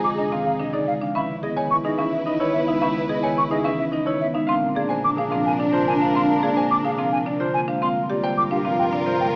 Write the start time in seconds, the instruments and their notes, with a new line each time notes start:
Already playing: double bass section F2, string section D#4 G#4
0.04 marimba G#3, flute D6
0.14 alto flute G#4, grand piano G#4
0.18 marimba C3 D4, flute D#5
0.32 marimba D#3 C4, grand piano F5
0.43 marimba C4, alto flute G#4, flute F5
0.60 marimba C3 D4, grand piano D#5
0.72 marimba D3 D#4, alto flute G#4, grand piano D5
0.88 marimba G#3, flute F5
1.01 marimba F3 D4, grand piano F5
1.15 double bass section C#2, marimba D#3 C#4, string section E4 B4, alto flute E4, grand piano E5, flute B5
1.29 marimba C#4
1.43 marimba B3 G#4, alto flute E4, grand piano D#5, flute D#5
1.56 marimba D#3 C#5, grand piano G#5
1.71 alto flute E4, flute C#6
1.84 marimba C#3 D#4, grand piano G#4, flute D#5
1.98 marimba E3 C#4, grand piano E5
2.02 alto flute E4
2.12 marimba C#4, flute E5
2.26 marimba C#3 D#4, grand piano D#5
2.31 alto flute E4
2.40 marimba D#3 E4, grand piano C#5
2.54 marimba B3, flute E5
2.61 alto flute E4
2.67 marimba G#3 D#4, grand piano E5
2.81 marimba D#3 C#4, grand piano E5, flute B5
2.90 alto flute E4
3.09 marimba B3 G#4, grand piano D#5, flute D#5
3.18 alto flute E4
3.23 marimba D#3 C#5, grand piano G#5
3.38 flute C#6
3.48 marimba D#4, alto flute E4, grand piano G#4, flute D#5
3.52 marimba C#3
3.64 marimba E3 C#4, grand piano E5
3.76 marimba C#4, alto flute E4, flute E5
3.92 marimba C#3 D#4, grand piano D#5
4.06 marimba D#3 E4, alto flute E4, grand piano C#5
4.21 marimba B3, flute E5
4.34 marimba G#3 D#4, grand piano E5
4.47 double bass section A#1, marimba D3 C4, string section D4 A#4, alto flute D4, grand piano F5, flute C6
4.63 marimba C4
4.75 marimba A#3 G#4, alto flute D4, grand piano D5, flute F5
4.89 marimba D3 C5, grand piano G#5
5.04 alto flute D4, flute D6
5.16 marimba C3 D4, grand piano G#4, flute F5
5.30 marimba F3 C4, grand piano F5
5.36 alto flute D4
5.46 marimba C4, flute G#5
5.58 marimba C3 D4, grand piano D5
5.65 alto flute D4
5.73 marimba D3 F4, grand piano C5
5.88 marimba A#3, flute G#5
5.94 alto flute D4
6.01 marimba G#3 D4, grand piano F5
6.14 marimba D3 C4, grand piano F5, flute C6
6.23 alto flute D4
6.29 marimba C4
6.43 marimba A#3 G#4, grand piano D5, flute F5
6.52 alto flute D4
6.56 marimba D3 C5, grand piano G#5
6.71 flute D6
6.80 alto flute D4, grand piano G#4
6.85 marimba C3 D4, flute F5
6.97 marimba F3 C4, grand piano F5
7.10 marimba C4, alto flute D4, flute G#5
7.26 marimba C3 D4, grand piano D5
7.39 marimba D3 F4, alto flute D4, grand piano C5
7.54 marimba A#3, flute G#5
7.68 marimba G#3 D4, grand piano F5
7.82 double bass section G2, marimba D3 C4, string section F4 A#4, alto flute F4, grand piano F5, flute C6
7.95 marimba C4
8.10 marimba A#3 G4, alto flute F4, grand piano D5
8.23 marimba D3 C5, grand piano G5
8.38 alto flute F4, flute D6
8.51 marimba C3 D4, grand piano G4, flute F5
8.65 marimba F3 C4, alto flute F4, grand piano F5
8.79 marimba C4, flute G5
8.92 marimba C3 D4, grand piano D5
8.98 alto flute F4
9.06 marimba D3 F4, grand piano C5
9.21 marimba A#3, flute G5
9.26 alto flute F4